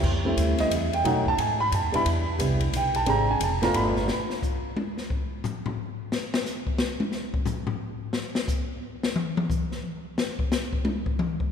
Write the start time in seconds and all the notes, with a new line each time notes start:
0.03 F2, kick, crash
0.25 G3 A3 C4 E4
0.37 D2, kick, hi-hat pedal, ride
0.58 G3 A3 C4 E4 D#5, snare, ride
0.70 E2, kick, hi-hat pedal, ride
0.75 E5
0.93 G5, ride
1.04 B2 F#3 A3 C#4 D#4 F#5, kick, ride
1.26 A5, kick
1.38 G#2 G#5, kick, ride
1.60 B5
1.71 F#2 A5, kick, hi-hat pedal, ride
1.82 D#2
1.92 B1 G3 B3 D4 E4 B5, ride
2.05 E2, kick, ride
2.39 C2 G3 B3 D4 E4, kick, hi-hat pedal, ride
2.60 ride
2.72 B1, kick, hi-hat pedal, ride
2.76 G5
2.94 A5, ride
3.06 G#1 G#3 C4 D4 G4 A#5, kick, ride
3.31 G#5
3.40 E1 A5, kick, hi-hat pedal, ride
3.62 A3 B3 D4 F4 A#5, snare, ride
3.74 G1 B5, kick, ride
3.96 snare
4.08 snare
4.30 snare
4.43 kick, hi-hat pedal
4.76 high tom
4.98 snare
5.10 kick
5.44 floor tom, hi-hat pedal
5.66 floor tom
6.12 snare
6.34 snare
6.46 snare, hi-hat pedal
6.67 kick
6.78 snare
7.00 high tom
7.12 snare
7.34 kick
7.46 floor tom, hi-hat pedal
7.67 floor tom
8.13 snare
8.35 snare
8.48 kick, hi-hat pedal
9.03 snare
9.16 mid tom
9.37 mid tom
9.50 kick, hi-hat pedal
9.72 snare
10.18 snare
10.39 kick
10.52 snare, hi-hat pedal
10.73 kick
10.85 high tom
11.06 kick
11.19 mid tom
11.40 kick